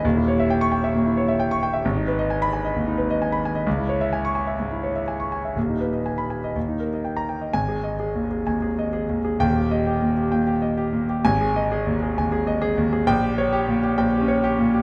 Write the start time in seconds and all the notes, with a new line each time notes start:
0.04 D#1 D#2
0.17 E4
0.28 C#5
0.40 E5
0.50 G5
0.61 C#6
0.72 G5
0.84 E5
0.95 A#2
1.06 E4
1.17 C#5
1.28 E5
1.40 G5
1.51 C#6
1.63 G5
1.73 E5
1.85 G#1
1.97 D#4
2.07 B4
2.19 D#5
2.30 G#5
2.42 B5
2.53 G#5
2.65 D#5
2.76 D#2
2.87 D#4
2.98 B4
3.10 D#5
3.22 G#5
3.32 B5
3.45 G#5
3.55 D#5
3.67 C#2
3.78 E4
3.89 C#5
4.01 E5
4.13 G#5
4.25 C#6
4.35 G#5
4.47 E5
4.60 G#2
4.72 E4
4.84 C#5
4.96 E5
5.08 G#5
5.20 C#6
5.32 G#5
5.45 E5
5.56 D#1 D#2
5.69 D#4
5.80 B4
5.93 D#5
6.06 G#5
6.18 B5
6.30 G#5
6.44 D#5
6.56 D#2
6.68 D#4
6.80 A#4
6.94 D#5
7.05 G5
7.17 A#5
7.29 G5
7.41 D#5
7.53 G#1 G#5
7.68 G#4
7.84 D#5
8.00 G#4
8.15 D#2
8.31 G#4
8.47 D#2 G#5
8.62 G#4
8.79 D#5
8.93 G#4
9.09 D#2
9.25 G#4
9.40 D#1 D#2 G5
9.56 G4
9.71 D#5
9.87 G4
10.02 A#2
10.17 G4
10.32 A#2 G5
10.47 G4
10.62 D#5
10.77 G4
10.93 A#2
11.09 G4
11.25 G#1 G#5
11.41 G#4
11.56 D#5
11.72 G#4
11.87 D#2
12.03 G#4
12.18 D#2 G#5
12.32 G#4
12.47 D#5
12.62 G#4
12.78 D#2
12.93 G#4
13.07 A#1 G5
13.23 G4
13.38 C#5
13.53 G4
13.68 A#2
13.83 G4
13.98 A#1 G5
14.14 G4
14.21 C#4
14.28 C#5
14.44 G4
14.59 A#2
14.74 G4